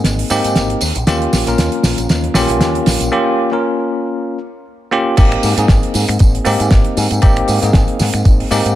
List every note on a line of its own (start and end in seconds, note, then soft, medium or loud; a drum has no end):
0.00 0.27 A#3 medium
0.00 0.28 C4 medium
0.00 0.28 D#4 medium
0.00 0.28 G#4 medium
0.04 0.22 G#1 medium
0.04 snare medium
0.04 closed hi-hat medium
0.04 tambourine soft
0.19 open hi-hat medium
0.30 0.40 G#2 medium
0.30 0.80 A#3 medium
0.30 0.80 C4 medium
0.30 0.80 D#4 medium
0.30 0.81 G4 loud
0.30 open hi-hat loud
0.30 tambourine medium
0.44 0.58 G#2 medium
0.44 closed hi-hat medium
0.44 tambourine soft
0.55 0.74 G#1 medium
0.55 snare medium
0.55 closed hi-hat medium
0.55 tambourine soft
0.70 closed hi-hat soft
0.81 0.91 D#2 loud
0.81 open hi-hat loud
0.81 tambourine medium
0.95 1.03 A#1 medium
0.95 closed hi-hat medium
0.95 tambourine soft
1.07 1.25 D#2 medium
1.07 1.44 A#3 medium
1.07 1.44 C#4 medium
1.07 1.44 F4 medium
1.07 1.44 G4 loud
1.07 snare medium
1.07 closed hi-hat medium
1.07 tambourine soft
1.22 closed hi-hat soft
1.33 1.42 A#1 medium
1.33 snare medium
1.33 open hi-hat loud
1.33 tambourine medium
1.46 1.54 A#1 medium
1.46 2.32 A#3 medium
1.46 2.33 C#4 medium
1.46 2.33 F4 medium
1.46 2.33 A#4 medium
1.46 closed hi-hat medium
1.46 tambourine soft
1.58 1.67 D#2 loud
1.58 snare medium
1.58 closed hi-hat medium
1.58 tambourine soft
1.72 closed hi-hat soft
1.83 1.93 A#1 medium
1.83 snare medium
1.83 open hi-hat loud
1.83 tambourine medium
1.98 2.06 A#1 medium
1.98 closed hi-hat medium
1.98 tambourine soft
2.09 2.27 D#2 medium
2.09 snare medium
2.09 closed hi-hat medium
2.09 tambourine soft
2.24 closed hi-hat soft
2.34 2.44 A#1 loud
2.34 3.09 A#3 loud
2.34 3.09 C#4 medium
2.34 3.10 F4 medium
2.34 3.10 G4 loud
2.34 snare medium
2.34 open hi-hat loud
2.34 tambourine medium
2.49 2.61 A#1 medium
2.49 closed hi-hat medium
2.49 tambourine soft
2.61 2.78 D#2 medium
2.61 snare medium
2.61 closed hi-hat medium
2.61 tambourine soft
2.75 closed hi-hat soft
2.86 2.96 A#1 loud
2.86 snare medium
2.86 open hi-hat loud
2.86 tambourine medium
3.01 3.08 A#1 medium
3.01 closed hi-hat medium
3.01 tambourine soft
3.12 3.49 A#3 medium
3.12 3.49 C#4 medium
3.12 3.49 F4 medium
3.12 3.49 G4 loud
3.51 4.37 A#3 medium
3.51 4.38 C#4 medium
3.51 4.38 F4 medium
3.51 4.38 A#4 medium
4.91 5.15 A#3 loud
4.91 5.15 C#4 medium
4.91 5.15 F4 medium
4.91 5.15 G4 loud
5.17 5.35 G#1 loud
5.17 5.54 A#3 medium
5.17 5.54 C4 medium
5.17 5.54 D#4 medium
5.17 5.54 G4 loud
5.17 kick loud
5.17 closed hi-hat medium
5.17 crash loud
5.17 tambourine soft
5.32 finger snap medium
5.32 closed hi-hat soft
5.43 5.52 G#2 medium
5.43 open hi-hat loud
5.43 tambourine medium
5.57 5.65 G#2 loud
5.57 6.43 A#3 medium
5.57 6.43 C4 medium
5.57 6.43 D#4 medium
5.57 6.44 G#4 medium
5.57 closed hi-hat medium
5.57 tambourine soft
5.68 5.78 G#1 loud
5.68 kick loud
5.68 snare loud
5.68 closed hi-hat medium
5.68 tambourine soft
5.83 closed hi-hat medium
5.94 6.04 G#2 medium
5.94 open hi-hat loud
5.94 tambourine medium
6.08 6.16 G#2 medium
6.08 finger snap medium
6.08 closed hi-hat medium
6.08 tambourine soft
6.19 6.38 G#1 medium
6.19 kick loud
6.19 closed hi-hat medium
6.19 tambourine soft
6.35 closed hi-hat soft
6.45 6.55 G#2 loud
6.45 7.19 A#3 loud
6.45 7.20 C4 medium
6.45 7.20 D#4 medium
6.45 7.20 G4 loud
6.45 open hi-hat loud
6.45 tambourine medium
6.60 6.67 G#2 medium
6.60 closed hi-hat medium
6.60 tambourine soft
6.71 6.81 G#1 loud
6.71 kick loud
6.71 snare loud
6.71 closed hi-hat medium
6.71 tambourine soft
6.84 closed hi-hat soft
6.97 7.06 G#2 medium
6.97 open hi-hat loud
6.97 tambourine medium
7.11 7.19 G#2 medium
7.11 closed hi-hat medium
7.11 tambourine soft
7.22 7.40 G#1 loud
7.22 7.59 A#3 loud
7.22 7.59 C4 medium
7.22 7.59 D#4 medium
7.22 7.59 G4 loud
7.22 kick loud
7.22 closed hi-hat medium
7.22 tambourine soft
7.36 finger snap medium
7.36 closed hi-hat soft
7.48 7.58 G#2 medium
7.48 open hi-hat loud
7.48 tambourine medium
7.62 7.70 G#2 loud
7.62 8.48 A#3 medium
7.62 8.48 C4 medium
7.62 8.48 D#4 medium
7.62 8.49 G#4 medium
7.62 closed hi-hat medium
7.62 tambourine soft
7.73 7.83 G#1 loud
7.73 kick loud
7.73 snare loud
7.73 closed hi-hat medium
7.73 tambourine soft
7.88 closed hi-hat soft
7.99 8.09 G#2 medium
7.99 snare medium
7.99 open hi-hat loud
7.99 tambourine medium
8.13 8.21 G#2 medium
8.13 finger snap medium
8.13 closed hi-hat medium
8.13 tambourine soft
8.25 8.43 G#1 medium
8.25 kick loud
8.25 closed hi-hat medium
8.25 tambourine soft
8.40 open hi-hat medium
8.51 8.60 G#2 loud
8.51 8.75 A#3 medium
8.51 8.75 C4 medium
8.51 8.75 D#4 medium
8.51 8.75 G4 loud
8.51 open hi-hat loud
8.51 tambourine medium
8.65 8.73 G#2 loud
8.65 closed hi-hat medium
8.65 tambourine soft